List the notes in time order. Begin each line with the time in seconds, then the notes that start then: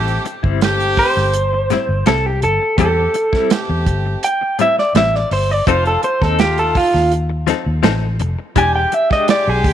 Already playing: A1 A2 G3 A3 C4 E4 G4
0.08 closed hi-hat
0.25 muted clean electric guitar stroke, closed hi-hat
0.43 G1 G3 C4 E4, kick
0.61 A3 C4 G4, muted clean electric guitar stroke, snare, closed hi-hat
0.80 muted clean electric guitar stroke, closed hi-hat
0.97 C5, kick, open hi-hat
1.17 G1, muted clean electric guitar stroke, snare
1.33 closed hi-hat
1.53 muted clean electric guitar stroke
1.70 A2 G3 C4 E4, snare, closed hi-hat
1.89 G1, muted clean electric guitar stroke
2.06 C2 A2 G3 C4 E4 A4, snare, closed hi-hat
2.26 G4
2.42 G1 A4, muted clean electric guitar stroke, closed hi-hat
2.62 muted clean electric guitar stroke
2.78 E2 A2 G3 A3 C4 E4 G4 A4, kick, closed hi-hat
3.14 muted clean electric guitar stroke, closed hi-hat
3.32 G3 C4 E4, kick, snare
3.50 A3 C4 G4, muted clean electric guitar stroke, snare, closed hi-hat
3.69 E2, muted clean electric guitar stroke
3.86 G1, kick, closed hi-hat
4.05 muted clean electric guitar stroke
4.23 G5, closed hi-hat
4.41 muted clean electric guitar stroke
4.59 A2 G3 C4 E4 E5, closed hi-hat
4.78 D5, muted clean electric guitar stroke, snare
4.95 A1 A2 G3 C4 E4 E5, snare, closed hi-hat
5.15 D5, snare
5.31 G1 C5, muted clean electric guitar stroke, open hi-hat
5.50 D5, muted clean electric guitar stroke
5.67 F1 F3 A3 C4 D#4 F4 A4 C5, kick, closed hi-hat
5.85 A4, closed hi-hat
6.03 C5, muted clean electric guitar stroke, closed hi-hat
6.21 D#2 C4 D#4 A4, kick, snare
6.39 A3 D#4 F4 G4, snare, closed hi-hat
6.58 A4, muted clean electric guitar stroke, closed hi-hat
6.75 F4, kick, open hi-hat
6.94 D#2, muted clean electric guitar stroke, snare
7.12 closed hi-hat
7.30 muted clean electric guitar stroke
7.47 F3 C4 D#4 A4, snare, closed hi-hat
7.66 D#2, muted clean electric guitar stroke
7.83 A1 F3 C4 D#4 A4, snare, closed hi-hat
8.20 F1, muted clean electric guitar stroke, closed hi-hat
8.39 muted clean electric guitar stroke
8.56 E1 E3 G#3 D4 G4 G#5, kick, closed hi-hat
8.75 G5
8.92 E5, muted clean electric guitar stroke, closed hi-hat
9.10 G#3 D4 G4 D#5, kick, snare
9.28 G#3 D4 G4 D5, muted clean electric guitar stroke, snare, closed hi-hat
9.48 B1 G#4, muted clean electric guitar stroke
9.64 D2 G4, kick, open hi-hat